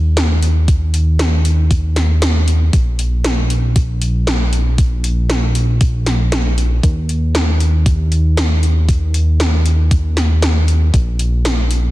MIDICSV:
0, 0, Header, 1, 3, 480
1, 0, Start_track
1, 0, Tempo, 512821
1, 637, Time_signature, 4, 2, 24, 8
1, 11149, End_track
2, 0, Start_track
2, 0, Title_t, "Analog synth bass"
2, 0, Program_c, 0, 38
2, 0, Note_on_c, 0, 39, 89
2, 2533, Note_off_c, 0, 39, 0
2, 2558, Note_on_c, 0, 34, 87
2, 6373, Note_off_c, 0, 34, 0
2, 6396, Note_on_c, 0, 39, 87
2, 10213, Note_off_c, 0, 39, 0
2, 10237, Note_on_c, 0, 34, 91
2, 11149, Note_off_c, 0, 34, 0
2, 11149, End_track
3, 0, Start_track
3, 0, Title_t, "Drums"
3, 158, Note_on_c, 9, 38, 117
3, 158, Note_on_c, 9, 42, 96
3, 252, Note_off_c, 9, 38, 0
3, 252, Note_off_c, 9, 42, 0
3, 398, Note_on_c, 9, 42, 67
3, 492, Note_off_c, 9, 42, 0
3, 637, Note_on_c, 9, 36, 123
3, 638, Note_on_c, 9, 42, 91
3, 731, Note_off_c, 9, 36, 0
3, 731, Note_off_c, 9, 42, 0
3, 878, Note_on_c, 9, 42, 69
3, 972, Note_off_c, 9, 42, 0
3, 1117, Note_on_c, 9, 38, 116
3, 1117, Note_on_c, 9, 42, 91
3, 1211, Note_off_c, 9, 38, 0
3, 1211, Note_off_c, 9, 42, 0
3, 1357, Note_on_c, 9, 42, 68
3, 1451, Note_off_c, 9, 42, 0
3, 1597, Note_on_c, 9, 36, 122
3, 1598, Note_on_c, 9, 42, 92
3, 1691, Note_off_c, 9, 36, 0
3, 1691, Note_off_c, 9, 42, 0
3, 1837, Note_on_c, 9, 38, 64
3, 1837, Note_on_c, 9, 42, 69
3, 1931, Note_off_c, 9, 38, 0
3, 1931, Note_off_c, 9, 42, 0
3, 2078, Note_on_c, 9, 38, 123
3, 2078, Note_on_c, 9, 42, 100
3, 2171, Note_off_c, 9, 38, 0
3, 2171, Note_off_c, 9, 42, 0
3, 2318, Note_on_c, 9, 42, 65
3, 2411, Note_off_c, 9, 42, 0
3, 2558, Note_on_c, 9, 36, 121
3, 2558, Note_on_c, 9, 42, 85
3, 2651, Note_off_c, 9, 36, 0
3, 2651, Note_off_c, 9, 42, 0
3, 2798, Note_on_c, 9, 42, 64
3, 2891, Note_off_c, 9, 42, 0
3, 3037, Note_on_c, 9, 38, 121
3, 3037, Note_on_c, 9, 42, 95
3, 3131, Note_off_c, 9, 38, 0
3, 3131, Note_off_c, 9, 42, 0
3, 3278, Note_on_c, 9, 42, 68
3, 3371, Note_off_c, 9, 42, 0
3, 3518, Note_on_c, 9, 36, 122
3, 3518, Note_on_c, 9, 42, 96
3, 3611, Note_off_c, 9, 36, 0
3, 3611, Note_off_c, 9, 42, 0
3, 3759, Note_on_c, 9, 42, 69
3, 3852, Note_off_c, 9, 42, 0
3, 3998, Note_on_c, 9, 38, 125
3, 3998, Note_on_c, 9, 42, 96
3, 4092, Note_off_c, 9, 38, 0
3, 4092, Note_off_c, 9, 42, 0
3, 4237, Note_on_c, 9, 42, 67
3, 4331, Note_off_c, 9, 42, 0
3, 4477, Note_on_c, 9, 36, 114
3, 4477, Note_on_c, 9, 42, 81
3, 4570, Note_off_c, 9, 42, 0
3, 4571, Note_off_c, 9, 36, 0
3, 4717, Note_on_c, 9, 42, 62
3, 4811, Note_off_c, 9, 42, 0
3, 4957, Note_on_c, 9, 38, 115
3, 4957, Note_on_c, 9, 42, 86
3, 5050, Note_off_c, 9, 38, 0
3, 5050, Note_off_c, 9, 42, 0
3, 5196, Note_on_c, 9, 42, 67
3, 5290, Note_off_c, 9, 42, 0
3, 5436, Note_on_c, 9, 42, 89
3, 5437, Note_on_c, 9, 36, 125
3, 5530, Note_off_c, 9, 36, 0
3, 5530, Note_off_c, 9, 42, 0
3, 5677, Note_on_c, 9, 38, 63
3, 5677, Note_on_c, 9, 42, 66
3, 5770, Note_off_c, 9, 38, 0
3, 5770, Note_off_c, 9, 42, 0
3, 5917, Note_on_c, 9, 38, 125
3, 5917, Note_on_c, 9, 42, 88
3, 6010, Note_off_c, 9, 38, 0
3, 6010, Note_off_c, 9, 42, 0
3, 6157, Note_on_c, 9, 42, 65
3, 6251, Note_off_c, 9, 42, 0
3, 6397, Note_on_c, 9, 36, 116
3, 6398, Note_on_c, 9, 42, 85
3, 6490, Note_off_c, 9, 36, 0
3, 6491, Note_off_c, 9, 42, 0
3, 6638, Note_on_c, 9, 42, 62
3, 6732, Note_off_c, 9, 42, 0
3, 6878, Note_on_c, 9, 38, 112
3, 6878, Note_on_c, 9, 42, 86
3, 6971, Note_off_c, 9, 38, 0
3, 6971, Note_off_c, 9, 42, 0
3, 7118, Note_on_c, 9, 42, 61
3, 7211, Note_off_c, 9, 42, 0
3, 7357, Note_on_c, 9, 36, 112
3, 7357, Note_on_c, 9, 42, 86
3, 7451, Note_off_c, 9, 36, 0
3, 7451, Note_off_c, 9, 42, 0
3, 7598, Note_on_c, 9, 42, 61
3, 7692, Note_off_c, 9, 42, 0
3, 7838, Note_on_c, 9, 38, 119
3, 7838, Note_on_c, 9, 42, 86
3, 7932, Note_off_c, 9, 38, 0
3, 7932, Note_off_c, 9, 42, 0
3, 8078, Note_on_c, 9, 42, 60
3, 8171, Note_off_c, 9, 42, 0
3, 8317, Note_on_c, 9, 36, 111
3, 8318, Note_on_c, 9, 42, 82
3, 8411, Note_off_c, 9, 36, 0
3, 8411, Note_off_c, 9, 42, 0
3, 8558, Note_on_c, 9, 42, 60
3, 8651, Note_off_c, 9, 42, 0
3, 8798, Note_on_c, 9, 38, 117
3, 8798, Note_on_c, 9, 42, 88
3, 8892, Note_off_c, 9, 38, 0
3, 8892, Note_off_c, 9, 42, 0
3, 9038, Note_on_c, 9, 42, 63
3, 9131, Note_off_c, 9, 42, 0
3, 9277, Note_on_c, 9, 36, 110
3, 9277, Note_on_c, 9, 42, 85
3, 9371, Note_off_c, 9, 36, 0
3, 9371, Note_off_c, 9, 42, 0
3, 9518, Note_on_c, 9, 38, 59
3, 9518, Note_on_c, 9, 42, 63
3, 9611, Note_off_c, 9, 38, 0
3, 9611, Note_off_c, 9, 42, 0
3, 9758, Note_on_c, 9, 38, 110
3, 9758, Note_on_c, 9, 42, 87
3, 9851, Note_off_c, 9, 38, 0
3, 9851, Note_off_c, 9, 42, 0
3, 9998, Note_on_c, 9, 42, 61
3, 10091, Note_off_c, 9, 42, 0
3, 10237, Note_on_c, 9, 36, 115
3, 10238, Note_on_c, 9, 42, 85
3, 10331, Note_off_c, 9, 36, 0
3, 10331, Note_off_c, 9, 42, 0
3, 10477, Note_on_c, 9, 42, 67
3, 10571, Note_off_c, 9, 42, 0
3, 10718, Note_on_c, 9, 38, 104
3, 10718, Note_on_c, 9, 42, 87
3, 10811, Note_off_c, 9, 38, 0
3, 10811, Note_off_c, 9, 42, 0
3, 10957, Note_on_c, 9, 42, 65
3, 11051, Note_off_c, 9, 42, 0
3, 11149, End_track
0, 0, End_of_file